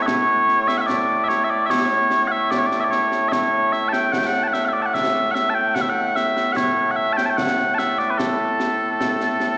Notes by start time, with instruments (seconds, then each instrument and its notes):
Already playing: bagpipes A2 A3
0.02 bagpipes E5
0.06 bagpipes C#5, concert bass drum, snare
0.49 snare
0.68 bagpipes E5, snare
0.77 bagpipes E5 F#5
0.87 bagpipes D5, concert bass drum, snare
1.24 bagpipes E5
1.28 bagpipes C#5, snare
1.44 bagpipes E5
1.50 bagpipes D5
1.66 bagpipes E5, concert bass drum, snare
1.70 bagpipes C#5
2.10 snare
2.27 bagpipes F#5
2.31 bagpipes E5
2.51 bagpipes D5, concert bass drum, snare
2.58 bagpipes C#5
2.66 bagpipes D5
2.71 snare
2.81 bagpipes D5 E5
2.90 bagpipes C#5, snare
3.12 snare
3.29 bagpipes C#5 E5, concert bass drum, snare
3.73 bagpipes E5, snare
3.89 bagpipes A5
3.93 bagpipes G5, snare
4.12 bagpipes F#5, concert bass drum, snare
4.19 bagpipes G5
4.27 bagpipes F#5
4.34 snare
4.44 bagpipes A5
4.48 bagpipes F#5
4.53 bagpipes E5, snare
4.65 bagpipes E5 F#5
4.73 bagpipes D5
4.82 bagpipes F#5 A5
4.94 bagpipes E5, concert bass drum, snare
5.31 bagpipes E5 F#5
5.35 snare
5.50 bagpipes A5
5.55 bagpipes G5
5.75 bagpipes F#5, concert bass drum, snare
5.81 bagpipes E5
5.89 bagpipes F#5
6.16 bagpipes E5, snare
6.37 snare
6.52 bagpipes F#5
6.56 bagpipes C#5, concert bass drum, snare
6.91 bagpipes F#5
6.96 bagpipes E5
7.13 bagpipes A5
7.17 bagpipes G5, snare
7.26 bagpipes A5
7.30 bagpipes G5
7.37 bagpipes F#5, concert bass drum, snare
7.59 snare
7.75 bagpipes E5 A5
7.79 snare
7.99 bagpipes D5, snare
8.10 bagpipes B4
8.18 bagpipes A4, concert bass drum, snare
8.60 snare
9.01 concert bass drum, snare
9.21 snare
9.40 snare